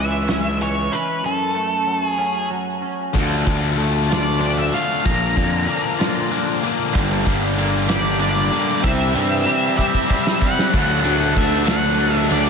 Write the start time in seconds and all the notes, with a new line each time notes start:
Already playing: C#2 C#3 E3 G#3 E5
0.27 C#4, snare, closed hi-hat
0.59 E3 C#5, closed hi-hat
0.91 C#4 B4, closed hi-hat
1.23 F#2 A4
1.54 A3
1.87 F#3
2.06 G#4
2.18 C#4
2.50 F#3
2.82 C#4
3.14 D2 D3 F3 A3 D4, kick, crash
3.46 D2 D3 F3 A3 D4, kick, closed hi-hat
3.78 D3 F3 A3 D4, closed hi-hat
4.09 D3 F3 A3 D4 F4 D5, snare, closed hi-hat
4.41 D3 F3 A3 D4 D5, closed hi-hat
4.59 E5
4.73 D3 F3 A3 D4 F5, closed hi-hat
5.04 A#1 A#2 D3 F3 A#3 D4 A#5, kick, closed hi-hat
5.36 F2 A#2 D3 F3 A#3 D4, kick, closed hi-hat
5.67 A#2 D3 F3 A#3 D4, closed hi-hat
5.99 A#2 D3 F3 A#3 D4 F4, snare, closed hi-hat
6.31 A#2 D3 F3 A#3 D4, closed hi-hat
6.63 A#2 D3 F3 A#3 D4, closed hi-hat
6.94 G1 G2 D3 G3 A#3 D4, kick, closed hi-hat
7.26 G1 G2 D3 G3 A#3 D4, kick, closed hi-hat
7.58 G2 D3 G3 A#3 D4, closed hi-hat
7.88 G2 D3 G3 A#3 D4 G4 D5, snare, closed hi-hat
8.19 G2 D3 G3 A#3 D4 D5, closed hi-hat
8.52 G2 D3 G3 A#3 D4, closed hi-hat
8.82 C2 C3 G3 C4 E4 E5, kick, closed hi-hat
9.14 G2 C3 E3 G3 C4 E4, closed hi-hat
9.46 C3 G3 C4 E4, closed hi-hat
9.77 C3 G3 C4 E4 G4 E5, kick
9.94 kick
10.09 C3 G3 C4 E4, kick
10.27 snare
10.40 C3 G3 C4 E4 F#5, kick
10.59 snare
10.72 D2 D3 F#3 A3 D4 F#4 A4 D5 A5, kick, crash
11.04 D2 F#3 A3 D4, ride
11.35 D2 D3 F#3 A3 D4 E5, kick, ride
11.67 D3 F#3 A3 D4 F#5, snare, ride
11.96 D3 F#3 A3 D4, ride
12.17 E5
12.30 D2 F#3 A3 D4 D5, ride